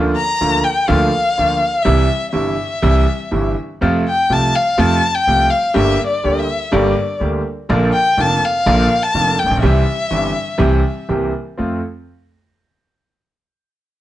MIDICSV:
0, 0, Header, 1, 4, 480
1, 0, Start_track
1, 0, Key_signature, -1, "major"
1, 0, Tempo, 484262
1, 1846, Time_signature, 4, 2, 24, 8
1, 10013, Tempo, 488998
1, 13846, End_track
2, 0, Start_track
2, 0, Title_t, "Violin"
2, 0, Program_c, 0, 40
2, 163, Note_on_c, 0, 82, 100
2, 636, Note_on_c, 0, 79, 87
2, 651, Note_off_c, 0, 82, 0
2, 877, Note_on_c, 0, 77, 95
2, 892, Note_off_c, 0, 79, 0
2, 1810, Note_on_c, 0, 76, 89
2, 1825, Note_off_c, 0, 77, 0
2, 2295, Note_off_c, 0, 76, 0
2, 2301, Note_on_c, 0, 76, 74
2, 3492, Note_off_c, 0, 76, 0
2, 4050, Note_on_c, 0, 79, 82
2, 4291, Note_on_c, 0, 81, 94
2, 4306, Note_off_c, 0, 79, 0
2, 4518, Note_on_c, 0, 77, 85
2, 4533, Note_off_c, 0, 81, 0
2, 4753, Note_on_c, 0, 81, 94
2, 4768, Note_off_c, 0, 77, 0
2, 5106, Note_on_c, 0, 79, 99
2, 5121, Note_off_c, 0, 81, 0
2, 5454, Note_on_c, 0, 77, 85
2, 5469, Note_off_c, 0, 79, 0
2, 5701, Note_off_c, 0, 77, 0
2, 5713, Note_on_c, 0, 76, 90
2, 6007, Note_off_c, 0, 76, 0
2, 6012, Note_on_c, 0, 74, 72
2, 6339, Note_on_c, 0, 76, 80
2, 6353, Note_off_c, 0, 74, 0
2, 6668, Note_on_c, 0, 74, 72
2, 6683, Note_off_c, 0, 76, 0
2, 7142, Note_off_c, 0, 74, 0
2, 7861, Note_on_c, 0, 79, 92
2, 8133, Note_on_c, 0, 81, 94
2, 8148, Note_off_c, 0, 79, 0
2, 8374, Note_on_c, 0, 77, 93
2, 8389, Note_off_c, 0, 81, 0
2, 8949, Note_on_c, 0, 81, 99
2, 8964, Note_off_c, 0, 77, 0
2, 9310, Note_on_c, 0, 79, 85
2, 9325, Note_off_c, 0, 81, 0
2, 9531, Note_off_c, 0, 79, 0
2, 9537, Note_on_c, 0, 76, 88
2, 10948, Note_off_c, 0, 76, 0
2, 13846, End_track
3, 0, Start_track
3, 0, Title_t, "Grand piano"
3, 0, Program_c, 1, 0
3, 0, Note_on_c, 1, 38, 79
3, 0, Note_on_c, 1, 50, 82
3, 0, Note_on_c, 1, 53, 66
3, 0, Note_on_c, 1, 58, 66
3, 0, Note_on_c, 1, 65, 77
3, 121, Note_off_c, 1, 58, 0
3, 121, Note_off_c, 1, 65, 0
3, 122, Note_off_c, 1, 50, 0
3, 122, Note_off_c, 1, 53, 0
3, 123, Note_off_c, 1, 38, 0
3, 404, Note_on_c, 1, 53, 44
3, 406, Note_on_c, 1, 38, 58
3, 406, Note_on_c, 1, 50, 55
3, 408, Note_on_c, 1, 65, 52
3, 409, Note_on_c, 1, 58, 44
3, 606, Note_off_c, 1, 38, 0
3, 606, Note_off_c, 1, 53, 0
3, 608, Note_off_c, 1, 50, 0
3, 608, Note_off_c, 1, 58, 0
3, 608, Note_off_c, 1, 65, 0
3, 869, Note_on_c, 1, 50, 80
3, 869, Note_on_c, 1, 58, 67
3, 871, Note_on_c, 1, 38, 82
3, 873, Note_on_c, 1, 53, 68
3, 876, Note_on_c, 1, 65, 76
3, 1079, Note_off_c, 1, 58, 0
3, 1080, Note_off_c, 1, 38, 0
3, 1080, Note_off_c, 1, 50, 0
3, 1081, Note_off_c, 1, 53, 0
3, 1082, Note_off_c, 1, 65, 0
3, 1365, Note_on_c, 1, 50, 51
3, 1366, Note_on_c, 1, 38, 53
3, 1366, Note_on_c, 1, 53, 41
3, 1369, Note_on_c, 1, 58, 39
3, 1375, Note_on_c, 1, 65, 50
3, 1567, Note_off_c, 1, 38, 0
3, 1567, Note_off_c, 1, 53, 0
3, 1569, Note_off_c, 1, 58, 0
3, 1571, Note_off_c, 1, 50, 0
3, 1572, Note_off_c, 1, 65, 0
3, 1831, Note_on_c, 1, 48, 80
3, 1833, Note_on_c, 1, 55, 62
3, 1835, Note_on_c, 1, 36, 76
3, 1835, Note_on_c, 1, 52, 61
3, 1838, Note_on_c, 1, 64, 78
3, 2040, Note_off_c, 1, 48, 0
3, 2040, Note_off_c, 1, 55, 0
3, 2042, Note_off_c, 1, 36, 0
3, 2042, Note_off_c, 1, 52, 0
3, 2043, Note_off_c, 1, 64, 0
3, 2305, Note_on_c, 1, 48, 45
3, 2306, Note_on_c, 1, 31, 52
3, 2306, Note_on_c, 1, 52, 40
3, 2312, Note_on_c, 1, 43, 54
3, 2312, Note_on_c, 1, 55, 40
3, 2313, Note_on_c, 1, 64, 51
3, 2518, Note_off_c, 1, 48, 0
3, 2519, Note_off_c, 1, 31, 0
3, 2519, Note_off_c, 1, 52, 0
3, 2521, Note_off_c, 1, 55, 0
3, 2522, Note_off_c, 1, 43, 0
3, 2522, Note_off_c, 1, 64, 0
3, 2797, Note_on_c, 1, 48, 78
3, 2799, Note_on_c, 1, 52, 62
3, 2802, Note_on_c, 1, 36, 81
3, 2802, Note_on_c, 1, 64, 76
3, 2806, Note_on_c, 1, 55, 62
3, 3010, Note_off_c, 1, 48, 0
3, 3010, Note_off_c, 1, 52, 0
3, 3011, Note_off_c, 1, 36, 0
3, 3011, Note_off_c, 1, 64, 0
3, 3013, Note_off_c, 1, 55, 0
3, 3285, Note_on_c, 1, 48, 41
3, 3286, Note_on_c, 1, 31, 53
3, 3287, Note_on_c, 1, 43, 51
3, 3287, Note_on_c, 1, 55, 39
3, 3287, Note_on_c, 1, 64, 47
3, 3288, Note_on_c, 1, 52, 40
3, 3498, Note_off_c, 1, 31, 0
3, 3498, Note_off_c, 1, 48, 0
3, 3499, Note_off_c, 1, 43, 0
3, 3499, Note_off_c, 1, 55, 0
3, 3499, Note_off_c, 1, 64, 0
3, 3500, Note_off_c, 1, 52, 0
3, 3777, Note_on_c, 1, 48, 69
3, 3783, Note_on_c, 1, 41, 77
3, 3783, Note_on_c, 1, 53, 75
3, 3784, Note_on_c, 1, 57, 59
3, 3786, Note_on_c, 1, 65, 74
3, 3987, Note_off_c, 1, 48, 0
3, 3990, Note_off_c, 1, 41, 0
3, 3990, Note_off_c, 1, 53, 0
3, 3990, Note_off_c, 1, 57, 0
3, 3991, Note_off_c, 1, 65, 0
3, 4259, Note_on_c, 1, 48, 51
3, 4262, Note_on_c, 1, 53, 41
3, 4262, Note_on_c, 1, 57, 41
3, 4267, Note_on_c, 1, 36, 54
3, 4269, Note_on_c, 1, 65, 50
3, 4470, Note_off_c, 1, 53, 0
3, 4470, Note_off_c, 1, 57, 0
3, 4471, Note_off_c, 1, 48, 0
3, 4473, Note_off_c, 1, 36, 0
3, 4473, Note_off_c, 1, 65, 0
3, 4735, Note_on_c, 1, 53, 82
3, 4736, Note_on_c, 1, 48, 69
3, 4736, Note_on_c, 1, 57, 65
3, 4738, Note_on_c, 1, 41, 83
3, 4741, Note_on_c, 1, 65, 72
3, 4946, Note_off_c, 1, 48, 0
3, 4946, Note_off_c, 1, 53, 0
3, 4946, Note_off_c, 1, 57, 0
3, 4947, Note_off_c, 1, 41, 0
3, 4949, Note_off_c, 1, 65, 0
3, 5229, Note_on_c, 1, 48, 54
3, 5229, Note_on_c, 1, 53, 40
3, 5230, Note_on_c, 1, 36, 51
3, 5234, Note_on_c, 1, 57, 42
3, 5237, Note_on_c, 1, 65, 47
3, 5431, Note_off_c, 1, 53, 0
3, 5432, Note_off_c, 1, 36, 0
3, 5432, Note_off_c, 1, 48, 0
3, 5434, Note_off_c, 1, 57, 0
3, 5435, Note_off_c, 1, 65, 0
3, 5689, Note_on_c, 1, 55, 59
3, 5691, Note_on_c, 1, 67, 78
3, 5693, Note_on_c, 1, 31, 76
3, 5693, Note_on_c, 1, 50, 65
3, 5694, Note_on_c, 1, 43, 83
3, 5694, Note_on_c, 1, 58, 64
3, 5900, Note_off_c, 1, 55, 0
3, 5900, Note_off_c, 1, 67, 0
3, 5901, Note_off_c, 1, 31, 0
3, 5902, Note_off_c, 1, 43, 0
3, 5902, Note_off_c, 1, 50, 0
3, 5902, Note_off_c, 1, 58, 0
3, 6180, Note_on_c, 1, 50, 54
3, 6180, Note_on_c, 1, 58, 41
3, 6183, Note_on_c, 1, 55, 42
3, 6184, Note_on_c, 1, 38, 54
3, 6192, Note_on_c, 1, 67, 54
3, 6384, Note_off_c, 1, 58, 0
3, 6386, Note_off_c, 1, 38, 0
3, 6386, Note_off_c, 1, 55, 0
3, 6387, Note_off_c, 1, 50, 0
3, 6390, Note_off_c, 1, 67, 0
3, 6655, Note_on_c, 1, 50, 73
3, 6661, Note_on_c, 1, 55, 69
3, 6661, Note_on_c, 1, 58, 64
3, 6662, Note_on_c, 1, 31, 84
3, 6663, Note_on_c, 1, 43, 88
3, 6668, Note_on_c, 1, 67, 77
3, 6859, Note_off_c, 1, 50, 0
3, 6862, Note_off_c, 1, 55, 0
3, 6862, Note_off_c, 1, 58, 0
3, 6863, Note_off_c, 1, 31, 0
3, 6863, Note_off_c, 1, 43, 0
3, 6865, Note_off_c, 1, 67, 0
3, 7134, Note_on_c, 1, 50, 52
3, 7140, Note_on_c, 1, 58, 45
3, 7142, Note_on_c, 1, 55, 42
3, 7145, Note_on_c, 1, 38, 56
3, 7145, Note_on_c, 1, 67, 52
3, 7340, Note_off_c, 1, 58, 0
3, 7341, Note_off_c, 1, 55, 0
3, 7342, Note_off_c, 1, 50, 0
3, 7343, Note_off_c, 1, 38, 0
3, 7343, Note_off_c, 1, 67, 0
3, 7622, Note_on_c, 1, 50, 73
3, 7628, Note_on_c, 1, 34, 85
3, 7628, Note_on_c, 1, 46, 84
3, 7630, Note_on_c, 1, 65, 76
3, 7632, Note_on_c, 1, 53, 66
3, 7632, Note_on_c, 1, 58, 68
3, 7820, Note_off_c, 1, 50, 0
3, 7823, Note_off_c, 1, 34, 0
3, 7823, Note_off_c, 1, 46, 0
3, 7824, Note_off_c, 1, 65, 0
3, 7825, Note_off_c, 1, 53, 0
3, 7825, Note_off_c, 1, 58, 0
3, 8105, Note_on_c, 1, 58, 45
3, 8106, Note_on_c, 1, 29, 57
3, 8110, Note_on_c, 1, 50, 48
3, 8110, Note_on_c, 1, 53, 43
3, 8113, Note_on_c, 1, 65, 53
3, 8115, Note_on_c, 1, 41, 54
3, 8301, Note_off_c, 1, 29, 0
3, 8301, Note_off_c, 1, 58, 0
3, 8303, Note_off_c, 1, 50, 0
3, 8303, Note_off_c, 1, 53, 0
3, 8305, Note_off_c, 1, 65, 0
3, 8306, Note_off_c, 1, 41, 0
3, 8587, Note_on_c, 1, 46, 83
3, 8588, Note_on_c, 1, 53, 67
3, 8589, Note_on_c, 1, 34, 87
3, 8589, Note_on_c, 1, 50, 70
3, 8591, Note_on_c, 1, 65, 77
3, 8593, Note_on_c, 1, 58, 64
3, 8782, Note_off_c, 1, 46, 0
3, 8783, Note_off_c, 1, 34, 0
3, 8783, Note_off_c, 1, 53, 0
3, 8784, Note_off_c, 1, 50, 0
3, 8784, Note_off_c, 1, 65, 0
3, 8785, Note_off_c, 1, 58, 0
3, 9067, Note_on_c, 1, 50, 42
3, 9068, Note_on_c, 1, 29, 55
3, 9068, Note_on_c, 1, 41, 51
3, 9068, Note_on_c, 1, 58, 41
3, 9071, Note_on_c, 1, 53, 40
3, 9072, Note_on_c, 1, 65, 51
3, 9262, Note_off_c, 1, 50, 0
3, 9263, Note_off_c, 1, 29, 0
3, 9263, Note_off_c, 1, 41, 0
3, 9263, Note_off_c, 1, 58, 0
3, 9264, Note_off_c, 1, 53, 0
3, 9265, Note_off_c, 1, 65, 0
3, 9375, Note_on_c, 1, 33, 49
3, 9424, Note_on_c, 1, 34, 62
3, 9425, Note_off_c, 1, 33, 0
3, 9479, Note_off_c, 1, 34, 0
3, 9484, Note_on_c, 1, 35, 66
3, 9538, Note_on_c, 1, 36, 81
3, 9538, Note_on_c, 1, 52, 70
3, 9538, Note_on_c, 1, 55, 60
3, 9539, Note_off_c, 1, 35, 0
3, 9542, Note_on_c, 1, 48, 75
3, 9544, Note_on_c, 1, 60, 63
3, 9544, Note_on_c, 1, 67, 74
3, 9737, Note_off_c, 1, 36, 0
3, 9737, Note_off_c, 1, 52, 0
3, 9737, Note_off_c, 1, 55, 0
3, 9739, Note_off_c, 1, 48, 0
3, 9740, Note_off_c, 1, 60, 0
3, 9740, Note_off_c, 1, 67, 0
3, 10016, Note_on_c, 1, 52, 45
3, 10017, Note_on_c, 1, 55, 40
3, 10017, Note_on_c, 1, 60, 39
3, 10020, Note_on_c, 1, 43, 53
3, 10021, Note_on_c, 1, 31, 52
3, 10024, Note_on_c, 1, 67, 49
3, 10217, Note_off_c, 1, 52, 0
3, 10217, Note_off_c, 1, 55, 0
3, 10217, Note_off_c, 1, 60, 0
3, 10219, Note_off_c, 1, 31, 0
3, 10219, Note_off_c, 1, 43, 0
3, 10221, Note_off_c, 1, 67, 0
3, 10481, Note_on_c, 1, 36, 77
3, 10484, Note_on_c, 1, 48, 78
3, 10484, Note_on_c, 1, 60, 63
3, 10487, Note_on_c, 1, 55, 59
3, 10488, Note_on_c, 1, 52, 66
3, 10488, Note_on_c, 1, 67, 80
3, 10694, Note_off_c, 1, 36, 0
3, 10695, Note_off_c, 1, 48, 0
3, 10695, Note_off_c, 1, 60, 0
3, 10696, Note_off_c, 1, 55, 0
3, 10697, Note_off_c, 1, 52, 0
3, 10697, Note_off_c, 1, 67, 0
3, 10978, Note_on_c, 1, 52, 45
3, 10979, Note_on_c, 1, 58, 37
3, 10980, Note_on_c, 1, 60, 39
3, 10982, Note_on_c, 1, 36, 51
3, 10984, Note_on_c, 1, 48, 51
3, 10985, Note_on_c, 1, 67, 46
3, 11187, Note_off_c, 1, 52, 0
3, 11188, Note_off_c, 1, 58, 0
3, 11188, Note_off_c, 1, 60, 0
3, 11189, Note_off_c, 1, 36, 0
3, 11190, Note_off_c, 1, 48, 0
3, 11191, Note_off_c, 1, 67, 0
3, 11459, Note_on_c, 1, 60, 48
3, 11465, Note_on_c, 1, 41, 46
3, 11465, Note_on_c, 1, 57, 44
3, 11465, Note_on_c, 1, 65, 52
3, 11666, Note_off_c, 1, 60, 0
3, 11669, Note_off_c, 1, 41, 0
3, 11669, Note_off_c, 1, 57, 0
3, 11669, Note_off_c, 1, 65, 0
3, 13846, End_track
4, 0, Start_track
4, 0, Title_t, "Upright bass"
4, 0, Program_c, 2, 32
4, 0, Note_on_c, 2, 38, 91
4, 131, Note_off_c, 2, 38, 0
4, 407, Note_on_c, 2, 38, 59
4, 607, Note_off_c, 2, 38, 0
4, 889, Note_on_c, 2, 38, 93
4, 1089, Note_off_c, 2, 38, 0
4, 1375, Note_on_c, 2, 38, 60
4, 1572, Note_off_c, 2, 38, 0
4, 1846, Note_on_c, 2, 36, 90
4, 2047, Note_off_c, 2, 36, 0
4, 2323, Note_on_c, 2, 31, 59
4, 2527, Note_off_c, 2, 31, 0
4, 2804, Note_on_c, 2, 36, 91
4, 3012, Note_off_c, 2, 36, 0
4, 3292, Note_on_c, 2, 31, 54
4, 3502, Note_off_c, 2, 31, 0
4, 3786, Note_on_c, 2, 41, 84
4, 3991, Note_off_c, 2, 41, 0
4, 4259, Note_on_c, 2, 36, 60
4, 4469, Note_off_c, 2, 36, 0
4, 4743, Note_on_c, 2, 41, 87
4, 4950, Note_off_c, 2, 41, 0
4, 5227, Note_on_c, 2, 36, 59
4, 5430, Note_off_c, 2, 36, 0
4, 5709, Note_on_c, 2, 31, 92
4, 5909, Note_off_c, 2, 31, 0
4, 6193, Note_on_c, 2, 38, 62
4, 6391, Note_off_c, 2, 38, 0
4, 6674, Note_on_c, 2, 31, 97
4, 6869, Note_off_c, 2, 31, 0
4, 7143, Note_on_c, 2, 38, 64
4, 7342, Note_off_c, 2, 38, 0
4, 7628, Note_on_c, 2, 34, 90
4, 7823, Note_off_c, 2, 34, 0
4, 8102, Note_on_c, 2, 29, 63
4, 8299, Note_off_c, 2, 29, 0
4, 8586, Note_on_c, 2, 34, 94
4, 8782, Note_off_c, 2, 34, 0
4, 9063, Note_on_c, 2, 29, 59
4, 9260, Note_off_c, 2, 29, 0
4, 9355, Note_on_c, 2, 33, 49
4, 9408, Note_off_c, 2, 33, 0
4, 9414, Note_on_c, 2, 34, 58
4, 9472, Note_off_c, 2, 34, 0
4, 9478, Note_on_c, 2, 35, 67
4, 9536, Note_off_c, 2, 35, 0
4, 9548, Note_on_c, 2, 36, 87
4, 9742, Note_off_c, 2, 36, 0
4, 10022, Note_on_c, 2, 31, 59
4, 10220, Note_off_c, 2, 31, 0
4, 10499, Note_on_c, 2, 36, 91
4, 10703, Note_off_c, 2, 36, 0
4, 10986, Note_on_c, 2, 36, 53
4, 11191, Note_off_c, 2, 36, 0
4, 11476, Note_on_c, 2, 41, 52
4, 11675, Note_off_c, 2, 41, 0
4, 13846, End_track
0, 0, End_of_file